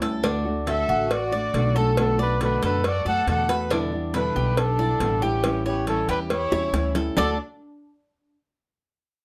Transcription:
Already playing: D2
0.01 G3 C#4 E4 A4, cowbell
0.23 D3 A3 D4 F#4, cowbell
0.45 A3 D4 F#4
0.66 D3 A3 D4 F#4 A4 E5, cowbell
0.89 A1 F#4
1.10 F#4 D5, muted nylon-string guitar stroke, cowbell
1.32 A3 D4 F#4 D5
1.53 B1 D3 A3 D4 F#4, cowbell
1.75 A3 C#4 D4 F#4 A4
1.97 B2 D3 A3 B3 D4 F#4 A4, cowbell
2.18 A3 B3 D4 F#4 B4 D5
2.40 B2 D3 A3 B3 D4 F#4 B4, cowbell
2.62 F#2 D4 A4 B4, cowbell
2.84 F#4 D5, muted nylon-string guitar stroke, cowbell
3.05 F#2 A3 B3 F#4 A4 D5 F#5
3.26 E2 B2 D3 A3 B3 F#4 A4 F#5, cowbell
3.49 A3 B3 F#4 B4, cowbell
3.70 B2 D3 G3 B3 D4 E4, cowbell
3.92 G3 B3 E4
4.13 B2 D3 G3 B3 D4 E4 B4, cowbell
4.36 B1 G4
4.57 D4 A4, muted nylon-string guitar stroke, cowbell
4.79 G3 B3 E4 D5
5.00 A1 B2 D3 G3 B3 E4, cowbell
5.22 G3 B3 C#4 E4 G4
5.44 E3 G3 C#4 E4, cowbell
5.65 G3 B3 C#4 E4 G4 C#5
5.87 E3 G3 C#4 E4 A4, cowbell
6.08 E2 D4 G4 B4, cowbell
6.30 E4 C#5, muted nylon-string guitar stroke, cowbell
6.52 E2 G3 C#4 E4 C#5, high bongo
6.73 D2 E3 G3 C#4 E4, cowbell, low bongo
6.95 G3 C#4 E4 A4, cowbell, low bongo
7.17 D2 D3 A3 D4 F#4 A4 D5, low bongo

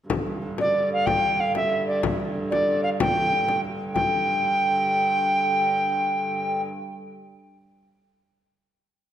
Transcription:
0.09 G2 D3, frame drum
0.27 frame drum
0.42 frame drum
0.58 D5, frame drum
0.93 F5
1.06 G5, frame drum
1.23 frame drum
1.39 F5, frame drum
1.55 E5, frame drum
1.87 D5
2.03 frame drum
2.20 frame drum
2.36 frame drum
2.51 D5, frame drum
2.83 F5
3.00 G5, frame drum
3.49 frame drum
3.64 frame drum
3.94 G2 D3 G5, frame drum

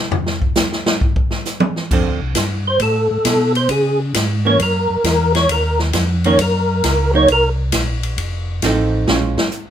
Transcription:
0.12 floor tom
0.26 snare
0.42 kick
0.55 snare, hi-hat pedal
0.72 snare
0.86 snare
1.01 kick
1.16 kick
1.31 snare
1.45 snare, hi-hat pedal
1.60 high tom
1.76 snare
1.91 F2 F3 C4 D4 A4, kick, crash
2.05 D2
2.21 C2
2.35 G2, kick, snare, hi-hat pedal, ride
2.67 C5
2.80 A2 A4, kick, ride
3.11 A2
3.25 B2, kick, snare, hi-hat pedal, ride
3.55 C5, ride
3.69 C#3 G#4, kick, ride
4.14 G#2, kick, snare, hi-hat pedal, ride
4.45 E3 A#3 C#4 C#5
4.59 F#2 A#4, kick, ride
4.90 F#2
5.04 E2, kick, snare, hi-hat pedal, ride
5.35 C#5, snare, ride
5.49 D#2 A#4, kick, ride
5.79 snare
5.93 F2, kick, snare, hi-hat pedal, ride
6.24 D#3 A#3 C#4 C#5, ride
6.39 F#2 A#4, kick, ride
6.84 C#2, kick, snare, hi-hat pedal, ride
7.13 F#3 A#3 D#4 C#5
7.28 C2 A#4, kick, ride
7.72 A#1, kick, snare, hi-hat pedal, ride
8.03 ride
8.18 F1, kick, ride
8.62 A1 F3 C4 D#4 A4, kick, snare, hi-hat pedal, ride
9.08 A#1 G#3 C#4 F4, snare
9.38 snare
9.51 hi-hat pedal

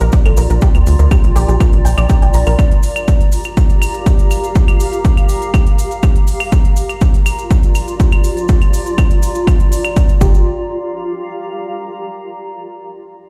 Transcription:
Already playing: F4 G4 D5 A#5
0.01 A#1 A#4, closed hi-hat, cabasa
0.12 D5, kick, closed hi-hat, cabasa
0.26 A#1 A4, closed hi-hat, cabasa, claves
0.37 A#1 A#4, open hi-hat, cabasa
0.50 A#1 A#4, closed hi-hat, cabasa
0.61 G4, kick, closed hi-hat, cabasa
0.75 D2, closed hi-hat, cabasa, claves
0.87 D2, open hi-hat, cabasa
0.99 D2 A#4, closed hi-hat, cabasa
1.11 G4, kick, closed hi-hat, cabasa, claves
1.24 A#1, closed hi-hat, cabasa
1.36 A#1 G4, open hi-hat, cabasa
1.48 A#1 G4, closed hi-hat, cabasa
1.60 A#4, kick, closed hi-hat, cabasa, claves
1.73 A#1, closed hi-hat, cabasa
1.85 A#1 G5, open hi-hat, cabasa
1.98 A#1 D5, closed hi-hat, cabasa, claves
2.09 G4, kick, closed hi-hat, cabasa
2.22 A#1 G5, closed hi-hat, cabasa
2.34 A#1 A#5, open hi-hat, cabasa
2.46 A#1 A#4, open hi-hat, cabasa, claves
2.59 G4, kick, closed hi-hat, cabasa, claves
2.71 closed hi-hat, cabasa
2.83 open hi-hat, cabasa
2.96 closed hi-hat, cabasa, claves
3.08 kick, closed hi-hat, cabasa
3.21 closed hi-hat, cabasa
3.32 open hi-hat, cabasa
3.44 F5, closed hi-hat, cabasa, claves
3.57 kick, closed hi-hat, cabasa
3.69 closed hi-hat, cabasa
3.82 open hi-hat, cabasa, claves
3.94 closed hi-hat, cabasa
4.06 kick, closed hi-hat, cabasa
4.19 closed hi-hat, cabasa
4.31 open hi-hat, cabasa, claves
4.44 closed hi-hat, cabasa
4.55 kick, closed hi-hat, cabasa
4.68 closed hi-hat, cabasa, claves
4.80 open hi-hat, cabasa
4.93 closed hi-hat, cabasa
5.05 kick, closed hi-hat, cabasa
5.17 closed hi-hat, cabasa, claves
5.29 open hi-hat, cabasa
5.42 closed hi-hat, cabasa
5.54 kick, closed hi-hat, cabasa, claves
5.67 closed hi-hat, cabasa
5.78 open hi-hat, cabasa
5.91 closed hi-hat, cabasa
6.03 kick, closed hi-hat, cabasa, claves
6.15 closed hi-hat, cabasa
6.27 open hi-hat, cabasa
6.40 open hi-hat, cabasa, claves
6.52 F4, kick, closed hi-hat, cabasa
6.65 closed hi-hat, cabasa
6.76 open hi-hat, cabasa
6.89 D5, closed hi-hat, cabasa, claves
7.01 kick, closed hi-hat, cabasa
7.14 closed hi-hat, cabasa
7.26 open hi-hat, cabasa, claves
7.39 closed hi-hat, cabasa
7.51 kick, closed hi-hat, cabasa
7.63 closed hi-hat, cabasa
7.75 open hi-hat, cabasa, claves
7.88 closed hi-hat, cabasa
8.00 kick, closed hi-hat, cabasa
8.12 closed hi-hat, cabasa, claves
8.24 open hi-hat, cabasa
8.37 closed hi-hat, cabasa
8.48 kick, closed hi-hat, cabasa
8.62 closed hi-hat, cabasa, claves
8.73 open hi-hat, cabasa
8.86 closed hi-hat, cabasa
8.98 kick, closed hi-hat, cabasa, claves
9.10 closed hi-hat, cabasa
9.23 open hi-hat, cabasa
9.35 closed hi-hat, cabasa
9.47 kick, closed hi-hat, cabasa, claves
9.60 closed hi-hat, cabasa
9.72 open hi-hat, cabasa
9.85 closed hi-hat, cabasa, claves
9.96 kick, closed hi-hat, cabasa
10.09 closed hi-hat, cabasa
10.21 G1 G4, kick, cabasa
10.29 F5
10.34 cabasa
10.61 A#5

